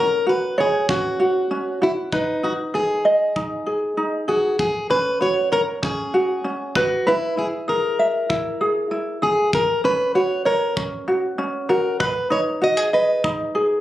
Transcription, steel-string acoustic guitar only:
0.00 0.29 A#4 medium
0.29 0.60 B4 medium
0.60 0.90 G#4 medium
0.90 1.83 F#4 medium
1.83 1.91 E4 medium
2.13 2.44 D#4 medium
2.44 2.52 F#4 medium
2.75 4.28 G#4 medium
4.29 4.59 F#4 medium
4.60 4.90 G#4 medium
4.91 5.22 B4 medium
5.22 5.52 C#5 medium
5.53 5.61 A#4 medium
5.85 6.79 G#4 medium
6.77 7.08 F#4 medium
7.08 7.38 E4 medium
7.39 7.47 G#4 medium
7.69 9.23 A#4 medium
9.23 9.54 G#4 medium
9.55 9.85 A#4 medium
9.85 10.15 B4 medium
10.15 10.46 C#5 medium
10.46 10.75 A#4 medium
11.69 11.98 A#4 medium
12.01 12.31 B4 medium
12.32 12.40 C#5 medium
12.64 12.94 D#5 medium
12.94 13.22 B4 medium

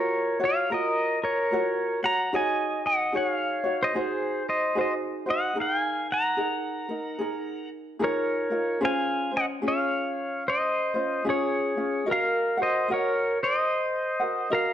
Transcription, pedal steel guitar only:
0.00 0.38 A#4 medium
0.00 0.43 C#5 medium
0.44 0.70 C#5 medium
0.44 0.74 F5 medium
0.72 1.19 A#4 medium
0.72 1.25 D#5 medium
1.24 1.99 A#4 medium
1.24 2.06 C#5 medium
2.04 2.31 F#5 medium
2.04 2.35 A#5 loud
2.35 2.81 D#5 medium
2.35 2.86 G#5 loud
2.86 3.13 D#5 medium
2.86 3.16 F#5 medium
3.16 3.77 C#5 medium
3.16 3.28 F#5 medium
3.28 3.83 F5 medium
3.83 3.95 C5 medium
3.83 3.97 D#5 medium
3.96 4.43 G#4 medium
3.96 4.48 C5 medium
4.49 4.76 C5 medium
4.49 4.79 D#5 medium
4.79 4.92 C5 medium
4.79 4.94 D#5 medium
5.30 5.57 D#5 medium
5.30 5.60 F#5 medium
5.60 6.06 F5 medium
5.60 5.80 G5 loud
5.80 6.12 G#5 loud
6.12 7.69 F#5 medium
6.12 7.70 A#5 medium
8.04 8.80 A#4 medium
8.04 8.86 C#5 medium
8.85 9.31 F5 medium
8.85 9.36 G#5 loud
9.37 9.45 D#5 medium
9.37 9.45 F#5 loud
9.68 10.43 C#5 medium
9.68 10.49 F5 medium
10.48 11.24 C5 medium
10.48 11.31 D#5 medium
11.29 12.05 G#4 medium
11.29 12.12 C#5 medium
12.11 12.57 A#4 medium
12.11 12.62 F5 loud
12.62 12.88 C5 medium
12.62 12.92 D#5 medium
12.92 13.38 A#4 medium
12.92 13.43 C#5 medium
13.43 14.49 C5 medium
13.43 14.54 D#5 loud
14.53 14.73 A#4 medium
14.53 14.73 F5 medium

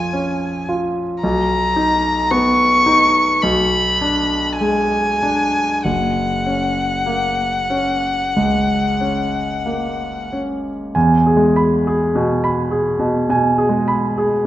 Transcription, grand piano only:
0.00 1.26 F2 soft
0.00 0.69 F4 soft
0.13 1.02 C#4 soft
0.69 1.24 F4 soft
1.23 3.38 B1 soft
1.76 2.63 D#4 soft
2.31 3.20 B3 soft
2.86 3.42 D#4 soft
3.43 5.81 B1 soft
4.01 4.99 D4 soft
4.61 5.60 G#3 soft
5.23 5.84 D4 soft
5.85 8.33 F#1 soft
6.46 7.46 C#4 soft
7.06 8.10 A#3 soft
7.70 8.75 C#4 soft
8.36 9.42 C#2 soft
9.01 10.06 C#4 soft
9.65 10.70 A#3 soft
10.32 10.95 C#4 soft
10.95 13.26 E2 soft
10.95 11.43 G#5 soft
11.26 11.74 G#4 soft
11.37 11.99 G#3 soft
11.56 12.03 B5 soft
11.87 12.33 G#4 soft
12.15 12.61 B2 soft
12.44 12.89 B5 soft
12.71 13.18 G#4 soft
12.99 13.28 B2 soft
13.29 13.92 B2 soft
13.29 13.77 G#5 soft
13.58 14.05 G#4 soft
13.69 14.30 G#3 soft
13.88 14.34 B5 soft
14.18 14.47 G#4 soft

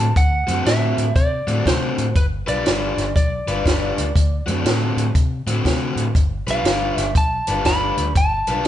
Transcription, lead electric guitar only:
0.00 0.17 A5 medium
0.17 0.63 F#5 medium
0.67 1.13 E5 medium
1.16 1.67 D5 medium
1.67 2.16 C5 medium
2.17 2.25 B4 medium
2.49 3.15 D5 medium
3.16 5.12 D5 medium
6.51 6.94 F5 medium
6.94 7.13 E5 medium
7.18 7.68 A5 medium
7.66 8.12 B5 medium
8.17 8.67 A5 medium

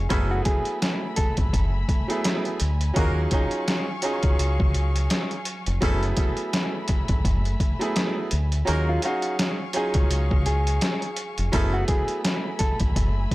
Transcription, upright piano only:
0.09 1.76 F#3 loud
0.09 1.77 A3 medium
0.09 1.77 B3 medium
0.09 1.77 E4 medium
0.09 1.77 G#4 loud
2.08 2.56 F#3 medium
2.08 2.56 A3 medium
2.08 2.57 B3 medium
2.08 2.57 E4 medium
2.08 2.57 G#4 loud
2.94 3.28 F#3 loud
2.94 3.28 C#4 medium
2.94 3.29 D#4 medium
2.94 3.29 F4 medium
2.94 3.29 G#4 loud
3.32 3.83 F#3 medium
3.32 3.83 C#4 medium
3.32 3.84 D#4 medium
3.32 3.84 F4 medium
3.32 3.84 G#4 loud
4.02 5.36 F#3 loud
4.02 5.36 C#4 medium
4.02 5.37 D#4 medium
4.02 5.37 F4 medium
4.02 5.37 G#4 loud
5.81 7.48 F#3 loud
5.81 7.48 A3 medium
5.81 7.48 B3 medium
5.81 7.49 E4 medium
5.81 7.49 G#4 loud
7.79 8.28 F#3 medium
7.79 8.28 A3 medium
7.79 8.28 B3 medium
7.79 8.29 E4 medium
7.79 8.29 G#4 loud
8.65 9.00 F#3 loud
8.65 9.00 C#4 medium
8.65 9.00 D#4 medium
8.65 9.01 F4 medium
8.65 9.01 G#4 loud
9.03 9.54 F#3 medium
9.03 9.55 C#4 medium
9.03 9.55 D#4 medium
9.03 9.56 G#4 medium
9.03 9.55 F5 medium
9.73 11.07 F#3 loud
9.73 11.08 C#4 medium
9.73 11.08 D#4 medium
9.73 11.08 F4 medium
9.73 11.08 G#4 loud
11.52 13.19 F#3 loud
11.52 13.19 A3 medium
11.52 13.20 B3 medium
11.52 13.20 E4 medium
11.52 13.20 G#4 loud

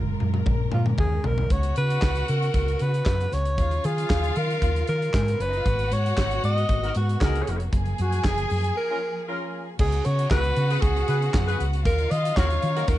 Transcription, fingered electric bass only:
0.00 0.15 F#1 medium
0.22 0.41 F#2 loud
0.47 0.66 A#1 medium
0.73 0.93 A#2 medium
0.99 1.18 D#2 medium
1.25 1.45 B1 medium
1.51 1.70 C#2 loud
1.78 1.97 C#3 loud
2.03 2.22 C#2 medium
2.29 2.49 C#3 medium
2.55 2.74 C#2 medium
2.81 3.01 C#3 medium
3.06 3.26 F#2 medium
3.33 3.58 C#2 medium
3.58 3.78 D#2 medium
3.85 4.04 D#3 medium
4.10 4.30 D#2 loud
4.37 4.56 D#3 loud
4.62 4.82 D#2 loud
4.89 5.08 D#3 loud
5.14 5.34 G#2 loud
5.40 5.59 F#1 medium
5.66 5.93 G#1 loud
5.92 6.11 G#2 medium
6.18 6.37 G#1 medium
6.44 6.63 G#2 medium
6.69 6.89 G#1 medium
6.96 7.15 G#2 medium
7.22 7.41 C#2 medium
7.48 7.67 F1 loud
7.73 7.92 F#1 loud
7.99 8.19 F#2 loud
8.25 8.44 F#1 loud
8.51 8.70 F#2 medium
9.80 9.99 C#2 loud
10.06 10.25 C#3 loud
10.31 10.51 C#2 loud
10.57 10.76 C#3 loud
10.83 11.02 C#2 loud
11.09 11.28 C#3 loud
11.35 11.54 F#2 loud
11.60 11.86 C#2 loud
11.86 12.05 D#2 loud
12.11 12.31 D#3 loud
12.38 12.57 D#2 medium
12.63 12.83 D#3 loud
12.88 12.98 D#2 loud

